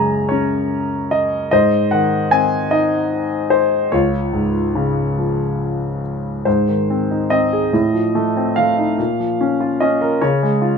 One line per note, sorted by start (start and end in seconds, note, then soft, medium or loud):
0.00 1.49 F#2 soft
0.00 1.09 C#3 soft
0.00 1.48 G#3 soft
0.00 0.27 C#5 soft
0.00 1.54 G#5 medium
0.00 0.28 A#5 medium
0.29 1.49 C#4 soft
0.29 1.14 C#5 medium
1.11 1.50 D#5 medium
1.51 3.89 G#2 soft
1.51 2.68 C5 soft
1.51 1.93 D#5 medium
1.91 3.48 D#3 soft
1.91 2.33 F#5 medium
2.31 3.89 C4 soft
2.31 2.73 G#5 medium
2.71 3.89 D#4 soft
2.71 3.54 D#5 medium
3.50 3.93 C5 medium
3.92 6.42 C#2 soft
3.92 6.01 F4 soft
3.92 6.00 C#5 medium
4.33 6.00 G#2 soft
4.75 6.42 C#3 soft
5.18 6.43 F3 soft
6.45 7.70 G#2 soft
6.45 7.33 C5 soft
6.68 7.70 D#3 soft
6.90 7.30 C4 soft
7.11 7.72 D#4 soft
7.30 7.72 C4 soft
7.30 8.53 D#5 medium
7.53 7.73 G#4 soft
7.73 8.95 A2 soft
7.94 8.95 F3 soft
8.15 8.56 A3 soft
8.37 8.97 C4 soft
8.56 8.98 A3 soft
8.56 9.85 F5 medium
8.78 8.98 D#4 soft
8.98 10.18 A#2 soft
9.20 10.19 F3 soft
9.41 9.80 C#4 soft
9.60 10.20 F4 soft
9.80 10.21 C#4 soft
9.80 10.23 D#5 medium
10.01 10.21 A#4 soft
10.21 10.78 C#3 soft
10.21 10.78 C#5 medium
10.43 10.78 G#3 soft
10.62 10.78 F4 soft